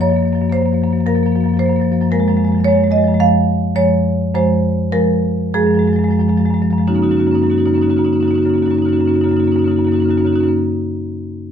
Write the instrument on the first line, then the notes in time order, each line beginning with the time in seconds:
marimba
0.01 F#2 F3 A#3 C#5
0.09 F#2 F3 A#3
0.19 F#2 F3
0.25 F3 A#3
0.32 F#2 F3 A#3
0.41 F#2 F3 A#3
0.50 F#2 F3 A#3 C5
0.57 A#3
0.62 F#2 F3 A#3
0.72 F#2 F3 A#3
0.82 F#2 F3 A#3
0.90 F#2 F3 A#3
0.98 F3 A#3
1.06 F#2 F3 A#3 A#4
1.15 F#2 F3 A#3
1.23 F3 A#3
1.27 F#2
1.32 F3 A#3
1.36 F#2
1.40 F3 A#3
1.46 F#2 A#3
1.54 F#2 F3 A#3
1.59 C5
1.64 F3 A#3
1.69 F#2 F3
1.76 A#3
1.80 F#2 F3
1.85 A#3
1.91 F#2 F3 A#3
2.01 F#2 F3 A#3
2.12 F#2 F3 G#3 A#4
2.20 F#2 F3 G#3
2.28 F#2 F3 G#3
2.37 F#2 F3 G#3
2.44 F3 G#3
2.48 F#2 G#3
2.55 F#2 F3
2.60 F3 G#3
2.64 F#2 G#3 C#5
2.72 F3 G#3
2.77 F#2 F3
2.84 F#2 F3 G#3
2.91 G#3 D#5
2.95 F#2 F3 G#3
3.04 F3 G#3
3.08 F#2
3.12 F3 G#3
3.20 F#2 F3 G#3 F5
3.76 F#2 F3 G#3 C#5
4.34 F#2 F3 G#3 C5
4.92 F#2 F3 G#3 A#4
5.54 F#2 F3 G#3 G#4
5.63 F#2 F3 G#3
5.71 F3 G#3
5.77 F#2 G#3
5.84 F3
5.88 F#2 G#3
5.93 F3 G#3
5.99 F#2 F3
6.04 F#2 G#3
6.11 F3 G#3
6.19 F#2 F3 G#3
6.28 F#2 F3 G#3
6.37 F#2 F3 G#3
6.45 F3 G#3
6.51 F#2 F3 G#3
6.62 F#2 F3 G#3
6.71 F#2 F3 G#3
6.78 F3 G#3
6.87 F#2 C#3 A#3 C#4 D#4 F#4
6.94 C#3 A#3 C#4 D#4 F#4
6.99 F#2 C#4 D#4
7.03 A#3 F#4
7.08 F#2 C#3 A#3 C#4 D#4 F#4
7.17 C#3 A#3 C#4 D#4 F#4
7.22 F#2 C#4
7.26 C#3 A#3 D#4 F#4
7.31 F#2 A#3 C#4 D#4
7.35 C#3 C#4 F#4
7.42 F#2 A#3 D#4 F#4
7.47 C#3 A#3 C#4 D#4
7.51 C#4 F#4
7.55 F#2 C#3 A#3 D#4
7.60 C#4 F#4
7.66 F#2 C#3 A#3 C#4 D#4 F#4
7.73 C#3 A#3 C#4 D#4 F#4
7.78 F#2 D#4
7.82 A#3 C#4 F#4
7.87 F#2 C#3 A#3 C#4 D#4 F#4
7.97 F#2 C#3 A#3 C#4 D#4 F#4
8.04 C#3 A#3 C#4 D#4 F#4
8.10 F#2 C#4 D#4 F#4
8.15 C#3 A#3
8.20 F#2 A#3 C#4 D#4 F#4
8.25 C#3 C#4 D#4
8.31 F#2 A#3 C#4 F#4
8.35 C#3 A#3 D#4 F#4
8.42 F#2 C#3 A#3 C#4 D#4
8.47 C#4 D#4 F#4
8.54 F#2 C#3 A#3 C#4 F#4
8.58 D#4
8.62 C#3 A#3 C#4 D#4 F#4
8.68 F#2 A#3 C#4 F#4
8.74 F#2 C#3 D#4 F#4
8.79 A#3 C#4 D#4
8.85 F#2 C#3 A#3 C#4 D#4 F#4
8.92 C#3 A#3 C#4 F#4
8.96 F#2 C#4 D#4
9.01 A#3 F#4
9.05 C#3 A#3 C#4 D#4 F#4
9.11 F#2 C#4 D#4
9.15 C#3 A#3 F#4
9.21 F#2 A#3 C#4 D#4 F#4
9.26 C#3 C#4 D#4
9.31 F#2 A#3 F#4
9.36 C#3 A#3 C#4 D#4 F#4
9.44 F#2 C#3 A#3 C#4 D#4 F#4
9.51 C#4 D#4 F#4
9.55 F#2 C#3 A#3 C#4 D#4
9.62 A#3 C#4 F#4
9.66 F#2 C#3 D#4 F#4
9.71 A#3 C#4
9.76 F#2 C#3 A#3 D#4 F#4
9.80 C#4
9.85 F#2 C#3 A#3 C#4 D#4 F#4
9.92 A#3 C#4 D#4 F#4
9.96 F#2 C#3 D#4
10.02 C#3 A#3 C#4 F#4
10.09 F#2 A#3 C#4 D#4 F#4
10.15 C#3 A#3 C#4 D#4 F#4
10.20 F#2
10.25 C#3 A#3 C#4 D#4 F#4
10.32 F#2 C#3 A#3 C#4 D#4 F#4
10.40 F#2 A#3 C#4 D#4 F#4
10.45 C#3 A#3 C#4